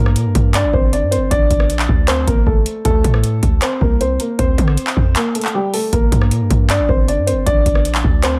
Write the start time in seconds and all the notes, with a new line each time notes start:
Already playing: G2 A#3 A#4
0.06 cross-stick
0.16 A#2, closed hi-hat
0.25 G2
0.35 G2, kick, closed hi-hat
0.54 D4 D5, clap, closed hi-hat
0.64 A1
0.73 G1 C4 C5, kick
0.93 D4 D5, closed hi-hat
1.02 G2
1.11 C4 C5, closed hi-hat
1.17 G1
1.31 G1 D4 D5, kick, closed hi-hat
1.50 G1, kick, closed hi-hat
1.60 cross-stick
1.70 A#1, closed hi-hat
1.79 clap
1.89 D2, kick
2.08 C4 C5, clap, closed hi-hat
2.27 G1 A#3 A#4, kick, closed hi-hat
2.47 G1 A3 A4, kick
2.66 closed hi-hat
2.85 D2 A3 A4, kick, closed hi-hat
3.04 A2, kick, closed hi-hat
3.14 cross-stick
3.24 closed hi-hat
3.43 D2, kick, closed hi-hat
3.62 C4 C5, clap, closed hi-hat
3.81 C2 A#3 A#4, kick
4.01 C4 C5, closed hi-hat
4.20 A#3 A#4, closed hi-hat
4.39 D2 C4 C5, kick, closed hi-hat
4.58 D3, kick, closed hi-hat
4.68 cross-stick
4.77 closed hi-hat
4.87 clap
4.97 F2, kick
5.16 A#3 A#4, clap, closed hi-hat
5.35 A3 A4, closed hi-hat
5.41 clap, closed hi-hat
5.48 closed hi-hat
5.54 G3 G4
5.73 A3 A4, open hi-hat
5.93 G1 A#3 A#4, kick, closed hi-hat
6.12 G2, kick, closed hi-hat
6.22 cross-stick
6.31 A#2, closed hi-hat
6.41 G2
6.50 G2, kick, closed hi-hat
6.70 D4 D5, clap, closed hi-hat
6.79 A1
6.89 G1 C4 C5, kick
7.08 D4 D5, closed hi-hat
7.18 G2
7.27 C4 C5, closed hi-hat
7.32 G1
7.46 G1 D4 D5, kick, closed hi-hat
7.66 G1, kick, closed hi-hat
7.75 cross-stick
7.85 A#1, closed hi-hat
7.95 clap
8.04 D2, kick
8.23 C4 C5, clap, closed hi-hat